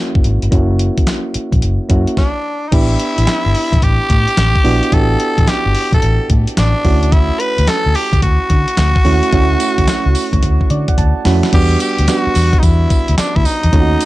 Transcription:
Already playing: A#3 C#4 E4 F#4
0.15 F#1, kick
0.24 G#1, closed hi-hat
0.42 G1, closed hi-hat
0.51 F#1 A#3 C#4 E4 F#4, kick, closed hi-hat
0.79 closed hi-hat
0.98 kick, closed hi-hat
1.07 snare, clap, closed hi-hat
1.34 muted fingered electric bass stroke, closed hi-hat
1.52 A#1, kick, closed hi-hat
1.62 F#1, closed hi-hat
1.89 F#2 A#3 C#4 E4 F#4, kick, closed hi-hat
2.07 closed hi-hat
2.17 D4, kick, snare
2.69 B3 D4 D#4 E4, kick, closed hi-hat, crash
2.73 A1 E4 G4
3.00 closed hi-hat
3.18 A1, closed hi-hat
3.27 snare, clap, closed hi-hat
3.46 G1
3.55 open hi-hat
3.73 A1, kick, closed hi-hat
3.82 A1 G4, kick, closed hi-hat
4.10 A2, kick, closed hi-hat
4.28 closed hi-hat
4.37 A1, snare, clap, closed hi-hat
4.56 kick
4.64 A#1 B3 D4 E4 F#4, open hi-hat
4.83 closed hi-hat
4.92 A1 B3 D4 E4 G4 A4, kick, closed hi-hat
5.20 closed hi-hat
5.38 A1, kick, closed hi-hat
5.47 G4, snare, clap, closed hi-hat
5.66 G1
5.75 open hi-hat
5.92 A1 A4, kick, closed hi-hat
6.02 A1, closed hi-hat
6.30 A2, kick, closed hi-hat
6.47 closed hi-hat
6.57 A1 D4, snare, clap, closed hi-hat
6.84 D2 A3 C#4 E4 F#4, kick, open hi-hat
7.03 closed hi-hat
7.12 E4, kick, closed hi-hat
7.40 B4, closed hi-hat
7.58 D2, closed hi-hat
7.67 A4, snare, clap, closed hi-hat
7.86 D2
7.95 G4, open hi-hat
8.13 C#2, kick, closed hi-hat
8.22 D2 F#4, kick, closed hi-hat
8.50 D3, kick, closed hi-hat
8.68 closed hi-hat
8.77 D2, snare, clap, closed hi-hat
8.96 kick
9.04 D#2 A3 C#4 E4 F#4, open hi-hat
9.23 closed hi-hat
9.32 D2 A3 C#4 E4 F#4, kick, closed hi-hat
9.60 closed hi-hat, tambourine
9.78 D2, kick, closed hi-hat
9.87 snare, clap, closed hi-hat, tambourine
10.06 C#2
10.15 open hi-hat, tambourine
10.33 D2, kick, closed hi-hat
10.43 D2, kick, closed hi-hat
10.61 kick
10.70 D3 D5, closed hi-hat
10.88 F#5, kick, closed hi-hat
10.98 D2 A5, kick, closed hi-hat
11.25 F2 A3 C#4 E4 F#4 B5, snare, open hi-hat
11.43 snare, closed hi-hat
11.52 E2 G3 B3 D4 F#4 G4, kick, closed hi-hat, crash
11.80 G4, closed hi-hat, tambourine
11.98 D2, closed hi-hat
12.07 G3 B3 D4 F#4, snare, clap, closed hi-hat, tambourine
12.27 muted fingered electric bass stroke
12.35 E2, open hi-hat, tambourine
12.53 kick, closed hi-hat
12.59 E2 D#4, kick, closed hi-hat, tambourine
12.64 E4
12.90 kick, closed hi-hat, tambourine
13.08 D2, closed hi-hat
13.18 D4, snare, clap, closed hi-hat, tambourine
13.36 D2 E4, kick
13.45 D#4, open hi-hat, tambourine
13.63 E2, closed hi-hat
13.72 D#2 A3 C#4 D#4 F4, kick, closed hi-hat
13.80 F#4
14.01 closed hi-hat, tambourine

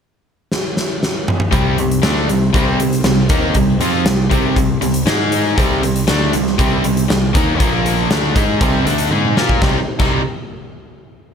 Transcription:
0.52 snare
0.77 snare
1.03 snare
1.28 mid tom
1.40 mid tom
1.51 C2 C3 G3 C4 D#4 G4 C5, kick, closed hi-hat
1.78 C2 C3 G3, closed hi-hat
1.91 closed hi-hat
2.02 D2 D3 A3 D4, snare, closed hi-hat
2.29 C2 C3 G3, closed hi-hat
2.53 C2 C3 G3 C4, kick, closed hi-hat
2.79 C2 C3 G3, closed hi-hat
2.93 closed hi-hat
3.04 C2 C3 G3, snare, closed hi-hat
3.29 D#2 D#3 A#3 D#4, kick, closed hi-hat
3.54 C2 C3 G3, kick, closed hi-hat
3.80 F2 F3 C4 F4, closed hi-hat
4.05 C2 C3 G3, snare, closed hi-hat
4.30 C2 C3 G3 C4, kick, closed hi-hat
4.56 C2 C3 G3, kick, closed hi-hat
4.81 C2 C3 G3, closed hi-hat
4.94 closed hi-hat
5.06 G#2 G#3 D#4 G#4 D#5, snare, closed hi-hat
5.32 closed hi-hat
5.57 C2 C3 G3 C4 D#4 G4 C5, kick, closed hi-hat
5.83 C2 C3 G3, closed hi-hat
5.96 closed hi-hat
6.07 D2 D3 A3 D4, snare, closed hi-hat
6.33 C2 C3 G3, closed hi-hat
6.47 snare
6.58 C2 C3 G3 C4, kick, closed hi-hat
6.84 C2 C3 G3, closed hi-hat
6.97 closed hi-hat
7.08 C2 C3 G3, snare, closed hi-hat
7.33 D#2 D#3 A#3 D#4, kick, closed hi-hat
7.59 A#1 A#2 F3 A#3 F4 A#4 F5, kick, closed hi-hat
7.86 closed hi-hat
8.10 D2 D3 A3 D4 D#4 G4 C5 D#5, snare, closed hi-hat
8.35 G#2 G#3 D#4 G#4, kick, closed hi-hat
8.59 C2 C3 G3 C4, kick, closed hi-hat
8.85 D2 D3 A3 D4, closed hi-hat
8.98 closed hi-hat
9.11 G#2 G#3 D#4 G#4, high tom
9.25 mid tom
9.37 A#2 A#3 F4 A#4, snare
9.49 kick
9.61 C2 C3 G3 C4 D#4 G4 C5 D#5, kick, snare
9.99 C2 C3 G3 C4 D#4, kick, crash

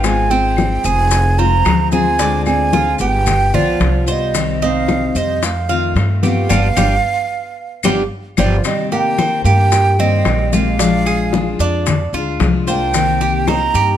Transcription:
Already playing: G#1 F4
0.04 G#3 C4 F4 G#5, high bongo, high conga, claves, maracas
0.30 C4 G5, high bongo, high conga, maracas
0.57 high bongo, high conga, claves, maracas
0.84 F1 C4 G#4 G#5, high conga, maracas
1.11 muted steel-string acoustic guitar stroke, high bongo, high conga, maracas
1.38 F3 G#3 C4 F4 C5 A#5, high bongo, high conga, maracas
1.65 D2 F3 G#3 C4 F4, high bongo, low bongo, high conga, claves, maracas
1.92 F3 G#3 C4 F4 G#4 G#5, high bongo, high conga, maracas
2.19 D3 G#3 C4 D4 F4, high bongo, high conga, maracas
2.46 C4 G#5, high bongo, high conga, claves, maracas
2.73 F4, high bongo, high conga, maracas
2.99 G1 B3 G4 G5, maracas
3.26 muted steel-string acoustic guitar stroke, high bongo, high conga, low conga, claves, maracas
3.53 B1 F3 B3 F4 D5, high bongo, high conga, low conga, maracas
3.80 C2 G3 B3, high bongo, low bongo, high conga, maracas
4.06 G3 B3 F4 C5 D#5, high conga, maracas
4.34 C3 D#3 G3 C4 G4, high bongo, high conga, claves, maracas
4.61 C4 D#4 F5, high bongo, high conga, maracas
4.88 high bongo, high conga, claves, maracas
5.15 F2 G3 C5 D#5, high conga, maracas
5.42 A3 F5, muted steel-string acoustic guitar stroke, high bongo, high conga, maracas
5.69 D#3 A3 C4 F4 F5, high bongo, high conga, maracas
5.95 G2 D#3 A3 C4 F4, high bongo, low bongo, high conga, claves, maracas
6.23 D#3 A3 B3 C4 F4 G4 F5, high bongo, high conga, maracas
6.49 G1 G3 B3 D4 F4 G4, high bongo, high conga, claves, maracas
6.77 G1 G3 B3 D4 F4 G4, high bongo, high conga, claves, maracas
7.83 G1 G3 B3 D4 F4 G4, high bongo, high conga, claves, maracas
8.37 G1 F3 G3 B3 D4 F4 G4 D5, high bongo, high conga, claves, maracas
8.64 C3 D#3 G3 A#3 C4 G4 D#5, high bongo, high conga, claves, maracas
8.92 A#3 G4 G5, high bongo, high conga, maracas
9.18 D#3 A#3 C4 G4 C5, high bongo, high conga, claves, maracas
9.44 G2 A#3 G4 G5, high conga, maracas
9.72 muted steel-string acoustic guitar stroke, high bongo, high conga, maracas
9.99 D#3 G3 A#3 C4 G4 D#5, high bongo, high conga, maracas
10.25 A#1 D#3 A#3 C4 G4, high bongo, low bongo, high conga, claves, maracas
10.53 D#3 G#3 A#3 C4 F4 G4 F5, high bongo, high conga, maracas
10.79 F3 G#3 D4 F4, high bongo, high conga, maracas
11.06 G#4, high bongo, high conga, claves, maracas
11.33 F3 G#3 D4 F4, high bongo, high conga, maracas
11.59 F2 D4, maracas
11.86 muted steel-string acoustic guitar stroke, high bongo, high conga, low conga, claves, maracas
12.13 D2 G#3 D4 F4, high bongo, high conga, maracas
12.40 C2 F3 G#3 D4 F4, high bongo, low bongo, high conga, maracas
12.67 G#3 A#3 D4 F4 C5 G5, high conga, maracas
12.94 C3 D#3 A#3 C4 G4, high bongo, high conga, claves, maracas
13.21 G4, high bongo, high conga, maracas
13.47 D#3 A#3 C4 D#4 G4 C5 A#5, high bongo, high conga, claves, maracas
13.74 G2 G4, high conga, maracas

